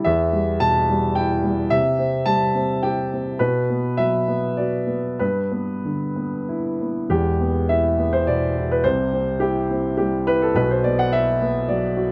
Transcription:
0.04 E2 E5
0.33 G3
0.60 B2 A5
0.90 G3
1.15 E4 G5
1.44 G3
1.70 C3 E5
1.99 C4
2.26 G3 A5
2.55 C4
2.83 G4 G5
3.13 C4
3.39 B2 B4
3.70 B3
3.97 F#3 E5
4.28 B3
4.57 F#4 D5
4.87 B3
5.19 G2 B4
5.52 B3
5.85 D3
6.16 B3
6.49 E4
6.81 B3
7.09 E1 E2 G4
7.40 B3
7.69 E4 E5
7.98 B3
8.13 C5
8.27 B2 D5
8.58 E4
8.71 B4
8.84 C2 C3 C5
9.13 C4
9.40 E4 G4
9.70 C4
9.97 G3 G4
10.27 E4 B4
10.42 A4
10.55 B1 B2 B4
10.71 C5
10.84 B3 D5
10.99 F#5
11.12 F#4 E5
11.42 B3
11.69 F#3 D5
11.97 F#4

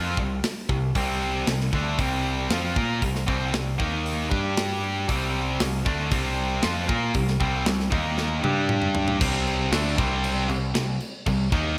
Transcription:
Already playing: F2 F3 C4 F4
0.17 C2 C3 G3, kick
0.44 snare, open hi-hat
0.69 C2 C3 G3, kick
0.95 C2 C3 G3 C4, kick, open hi-hat
1.47 C2 C3 G3, snare, open hi-hat
1.60 snare
1.73 D2 D3 A3 D4, kick
1.99 C2 C3 G3 C4, kick, open hi-hat
2.50 F2 F3 C4 F4, snare, open hi-hat
2.76 A#2 A#3 F4 A#4, kick
3.02 C2 C3 G3, kick, open hi-hat
3.15 snare
3.27 C2 C3 G3 C4, kick
3.53 C2 C3 G3, snare, open hi-hat
3.78 D#2 D#3 A#3 D#4, kick
4.06 open hi-hat
4.29 G2 G3 D4 G4, kick
4.57 snare, open hi-hat
5.08 C2 C3 G3 C4, kick, open hi-hat
5.60 C2 C3 G3, snare, open hi-hat
5.85 D2 D3 A3 D4, kick
6.11 C2 C3 G3 C4, kick, open hi-hat
6.63 F2 F3 C4 F4, snare, open hi-hat
6.88 A#2 A#3 F4 A#4, kick
7.14 C2 C3 G3, kick, open hi-hat
7.28 snare
7.40 C2 C3 G3 C4, kick
7.66 C2 C3 G3, snare, open hi-hat
7.80 snare
7.91 D#2 D#3 A#3 D#4, kick
8.18 snare
8.42 G2 G3 D4 G4, high tom
8.69 mid tom
8.82 mid tom
8.95 floor tom
9.08 floor tom
9.20 C2 C3 G3 C4, kick, crash
9.47 crash
9.72 D2 D3 A3 D4, snare, crash
9.97 C2 C3 G3 C4, kick, crash
10.24 crash
10.49 C2 C3 G3, crash
10.74 C2 C3 G3, snare, crash
11.00 crash
11.26 C2 C3 G3, kick, crash
11.52 D#2 D#3 A#3 D#4, kick, crash

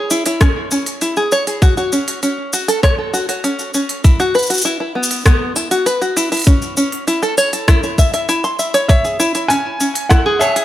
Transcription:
0.10 E4, cabasa
0.26 E4, open hi-hat, cabasa
0.41 C#4, kick, cross-stick, open hi-hat, cabasa
0.71 C#4, cabasa
0.86 open hi-hat, cabasa
1.01 E4, open hi-hat, cabasa
1.17 G#4, cabasa
1.32 C#5, cabasa
1.47 G#4, open hi-hat, cabasa
1.62 F#4, kick, open hi-hat, cabasa
1.77 F#4, cabasa
1.92 C#4, cabasa
2.08 open hi-hat, cabasa
2.23 C#4, open hi-hat, cabasa
2.53 F#4, cabasa
2.68 A4, open hi-hat, cabasa
2.83 C#5, kick, cross-stick, open hi-hat, cabasa
2.98 A4
3.13 F#4, cabasa
3.29 F#4, open hi-hat, cabasa
3.44 C#4, open hi-hat, cabasa
3.59 cabasa
3.74 C#4, cabasa
3.89 open hi-hat
4.04 E4, kick, open hi-hat, cabasa
4.20 F#4, cabasa
4.35 B4, cabasa
4.39 cabasa
4.42 cabasa
4.46 F#4, open hi-hat, cabasa
4.50 cabasa
4.54 cabasa
4.58 cabasa
4.61 E4, cabasa
4.65 cabasa
4.80 E4
4.95 B3
5.03 cabasa
5.11 open hi-hat, cabasa
5.13 cabasa
5.18 cabasa
5.21 cabasa
5.23 B3, kick, cross-stick, open hi-hat, cabasa
5.26 cabasa
5.56 E4, cabasa
5.71 F#4, open hi-hat, cabasa
5.86 B4, open hi-hat, cabasa
6.01 F#4, cabasa
6.17 E4, cabasa
6.32 E4, open hi-hat, cabasa
6.34 open hi-hat
6.37 open hi-hat
6.39 open hi-hat
6.42 open hi-hat
6.44 C#4, kick, open hi-hat
6.47 open hi-hat, cabasa
6.62 cabasa
6.77 C#4, cabasa
6.92 open hi-hat
7.07 E4, open hi-hat, cabasa
7.23 A4, cabasa
7.38 C#5, cabasa
7.53 A4, open hi-hat, cabasa
7.68 E4, kick, cross-stick, open hi-hat, cabasa
7.83 E4, cabasa
7.98 E5, kick, cabasa
8.14 E5, open hi-hat, cabasa
8.29 E4, open hi-hat, cabasa
8.44 C6, cabasa
8.59 E5, cabasa
8.74 C#5, open hi-hat, cabasa
8.88 C#5 E5, kick, open hi-hat, cabasa
9.05 G#4, cabasa
9.20 E4, cabasa
9.35 E4, open hi-hat, cabasa
9.48 C#4 G#5, open hi-hat, cabasa
9.80 C#4, cabasa
9.95 open hi-hat, cabasa
10.09 E4 F#5, kick, cross-stick, open hi-hat, cabasa
10.26 G#4
10.39 C#5 E5, cabasa, low woodblock
10.56 G#4, open hi-hat, cabasa

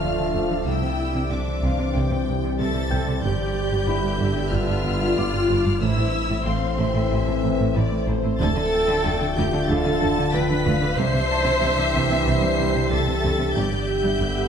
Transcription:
Already playing: D1 F3 A3 D4 F4 A4 D5 F5 D6 F6, impact
0.01 D2 D3
0.18 D3
0.33 D2 D3
0.50 D3
0.65 C2 C3 E3 G3 C4 E4 G4 C5 G5 E6
0.82 C3
1.14 C3
1.30 C2 C3 D4 E5 D6
1.46 C3
1.62 C2 C3 F5
1.78 C3
1.94 C2 C3 G5
2.11 C3
2.27 C2 C3
2.43 C3
2.59 C2 C3 A4 E5 A6
2.75 C3
2.90 C2 C3 G5 G6
3.07 C3
3.23 G1 G2 D3 B3 D4 G4 B4 D5 G6
3.40 G2
3.72 G2
3.87 G1 G2 E4 E5 B5
4.04 G2
4.20 G1 G2
4.37 G2
4.52 G1 G2 F4 F6
4.69 G2
4.84 G1 G2
5.01 G2
5.17 G1 G2 D5 D6
5.33 G2
5.49 G1 G2 D5
5.66 G2
5.81 A1 A2 E3 A3 C4 E4 A4 C5 E6
5.98 A2
6.15 E5
6.30 A2
6.46 A1 A2 C4 F5 C6
6.63 A2
6.78 A1 A2 E5
6.95 A2
7.11 A1 A2
7.27 A2
7.44 A1 A2
7.60 A2
7.75 A1 A2 D5
7.92 A2
8.08 A1 A2 C5
8.24 A2
8.39 D1 D2 D3 F3 D4 F4 A4 D5 A5 A6
8.57 D3
8.72 G5
8.88 D3
9.05 D2 D3
9.21 D3
9.36 D2 D3 G4 G6
9.53 D3
9.67 D2 D3 A4 F5 A6
9.85 D3
10.01 D2 D3 A5
10.18 D3
10.33 D2 D3 B4 G5 B6
10.49 D3
10.65 D2 D3 F5
10.82 D3
10.97 C2 C3 E3 G3 G4 C5 E5 C7
11.14 C3
11.31 A5
11.46 C3
11.62 C2 C3
11.78 C3
11.94 C2 C3
12.11 C3
12.27 C2 C3 C5 C7
12.43 C3
12.59 C2 C3
12.75 C3
12.91 C2 C3 A4 E5 A6
13.07 C3
13.23 C2 C3
13.40 C3
13.55 G1 G2 D3 B3 D4 G4 D5 G6
13.72 G2
13.89 E5
14.04 G2
14.20 G1 G2
14.37 G2

